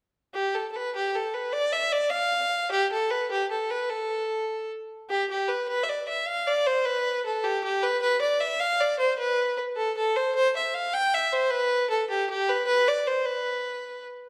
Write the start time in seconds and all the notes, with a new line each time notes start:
0.34 G4
0.55 A4
0.71 A4
0.76 B4
0.96 G4
1.16 A4
1.34 B4
1.53 D5
1.73 E5
1.93 D5
2.10 F5
2.71 G4
2.92 A4
3.11 B4
3.31 G4
3.51 A4
3.70 B4
3.90 A4
5.10 G4
5.30 G4
5.48 B4
5.68 B4
5.83 E5
5.89 D5
6.08 E5
6.27 F5
6.47 D5
6.66 C5
6.85 B4
7.26 A4
7.44 G4
7.64 G4
7.83 B4
8.02 B4
8.21 D5
8.41 E5
8.60 F5
8.81 D5
8.99 C5
9.19 B4
9.76 A4
9.97 A4
10.16 C5
10.35 C5
10.56 E5
10.74 F5
10.94 G5
11.14 E5
11.33 C5
11.51 B4
11.90 A4
12.10 G4
12.30 G4
12.49 B4
12.67 B4
12.88 D5
13.07 C5
13.26 B4